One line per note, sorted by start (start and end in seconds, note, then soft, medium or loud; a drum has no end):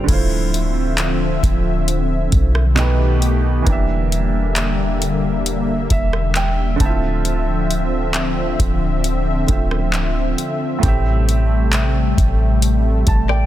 0.00 2.71 D3 medium
0.00 0.10 G3 medium
0.00 0.10 F4 soft
0.06 1.39 D1 loud
0.06 2.74 D3 medium
0.06 2.74 F3 medium
0.06 2.72 A3 medium
0.06 2.74 C4 medium
0.06 2.73 E4 medium
0.06 2.74 E5 loud
0.06 kick loud
0.06 closed hi-hat medium
0.06 crash loud
0.11 2.74 F4 medium
0.11 2.76 C5 medium
0.54 closed hi-hat medium
0.98 clap loud
0.98 closed hi-hat medium
1.43 2.29 D1 loud
1.43 kick medium
1.43 closed hi-hat medium
1.88 closed hi-hat medium
2.32 3.63 B1 loud
2.32 kick medium
2.32 closed hi-hat medium
2.55 cross-stick loud
2.75 3.66 B2 medium
2.75 3.66 D#3 medium
2.75 3.66 A3 medium
2.75 3.66 B3 medium
2.75 3.67 D#4 medium
2.75 3.66 G4 medium
2.75 3.68 G4 medium
2.75 clap loud
2.75 closed hi-hat medium
2.80 3.68 B4 medium
3.22 closed hi-hat medium
3.62 6.74 E3 medium
3.62 6.75 A#3 medium
3.67 5.87 E1 loud
3.67 6.77 D3 medium
3.67 6.77 G3 medium
3.67 6.77 A#3 medium
3.67 6.76 D4 medium
3.67 6.78 G4 medium
3.67 13.46 E5 loud
3.67 kick loud
3.67 closed hi-hat medium
3.72 5.90 E5 medium
4.12 closed hi-hat medium
4.56 clap loud
4.56 closed hi-hat medium
5.02 closed hi-hat medium
5.46 closed hi-hat medium
5.90 6.77 E1 loud
5.90 6.33 E5 medium
5.90 kick medium
5.90 closed hi-hat medium
6.13 cross-stick loud
6.35 6.77 G5 medium
6.35 clap loud
6.35 closed hi-hat medium
6.76 9.43 D3 medium
6.76 9.44 A3 medium
6.80 8.55 D1 loud
6.80 10.79 D3 medium
6.80 10.79 F3 medium
6.80 9.45 C4 medium
6.80 10.79 C4 medium
6.80 6.88 E4 medium
6.80 7.22 A5 medium
6.80 kick loud
6.80 closed hi-hat medium
6.86 9.49 F4 medium
6.86 9.47 E5 medium
7.25 closed hi-hat medium
7.71 closed hi-hat medium
8.14 clap loud
8.14 closed hi-hat medium
8.59 9.45 D1 loud
8.59 kick medium
8.59 closed hi-hat medium
9.04 closed hi-hat medium
9.47 10.35 D1 loud
9.47 10.82 D3 medium
9.47 10.79 A3 medium
9.47 10.82 C4 medium
9.47 10.84 F4 medium
9.47 kick medium
9.47 closed hi-hat medium
9.52 10.85 E5 medium
9.71 cross-stick loud
9.93 clap loud
9.93 closed hi-hat medium
10.38 closed hi-hat medium
10.79 13.46 A2 medium
10.79 13.46 A3 medium
10.83 12.13 A1 loud
10.83 13.46 C3 medium
10.83 13.46 G3 medium
10.83 13.46 A3 medium
10.83 13.46 C4 medium
10.83 13.46 G4 medium
10.83 kick loud
10.83 closed hi-hat medium
10.88 13.46 E5 medium
11.29 closed hi-hat medium
11.73 clap loud
11.73 closed hi-hat medium
12.18 13.04 A1 loud
12.18 kick medium
12.18 closed hi-hat medium
12.62 closed hi-hat medium
13.07 13.46 A1 loud
13.07 13.28 A5 medium
13.07 kick medium
13.07 closed hi-hat medium
13.29 13.46 D5 medium
13.29 13.46 G5 medium
13.29 cross-stick medium